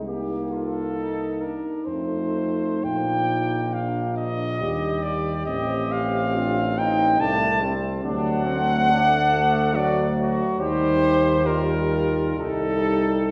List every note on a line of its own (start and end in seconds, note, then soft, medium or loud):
0.00 1.59 C2 medium
0.00 0.50 G4 medium
0.04 1.56 A#3 medium
0.04 3.74 D#4 medium
0.50 0.96 F4 medium
0.50 1.43 A4 medium
0.96 1.41 D#4 medium
1.41 1.87 D4 medium
1.41 1.86 A#4 medium
1.85 2.82 F2 medium
1.85 2.87 A3 medium
1.85 2.68 C4 medium
1.85 2.86 C5 medium
2.85 4.63 A#1 medium
2.85 4.62 F3 medium
2.85 4.57 A#3 medium
2.85 3.75 G5 loud
3.74 5.30 D4 medium
3.74 4.16 F5 medium
4.17 5.05 D#5 loud
4.60 5.47 D#2 medium
4.60 5.47 G3 medium
4.60 6.34 G4 medium
5.03 5.45 D5 loud
5.46 7.21 A1 medium
5.46 7.21 C4 medium
5.46 6.31 C4 medium
5.46 5.93 D#5 loud
5.92 6.80 F5 loud
6.34 6.77 D4 medium
6.34 6.77 F4 medium
6.77 7.19 D#4 medium
6.77 7.20 D#4 medium
6.77 7.22 G5 loud
7.19 8.04 C2 medium
7.19 7.63 A3 medium
7.19 8.05 C4 medium
7.19 7.62 D4 medium
7.19 7.79 A5 loud
7.62 8.04 G3 medium
7.62 8.05 C4 medium
8.03 10.41 D2 medium
8.03 8.92 F#3 medium
8.03 9.71 A3 medium
8.03 8.46 D4 loud
8.03 9.77 F#5 loud
8.46 8.90 C4 medium
8.89 9.20 A3 medium
8.89 9.74 D4 loud
9.32 9.76 A3 medium
9.74 10.59 F#3 medium
9.74 10.57 A3 medium
9.74 10.05 F#4 medium
9.74 10.18 D5 loud
10.17 10.59 F#4 loud
10.58 12.34 D#2 medium
10.58 11.42 G3 medium
10.58 11.42 D#4 medium
10.58 11.46 G4 loud
10.58 11.48 C5 loud
11.45 12.36 G3 medium
11.45 12.36 D#4 medium
11.45 12.38 F4 medium
11.45 12.38 A#4 loud
12.37 13.31 C2 medium
12.37 13.31 G3 medium
12.37 13.31 D#4 medium
12.37 13.31 A4 loud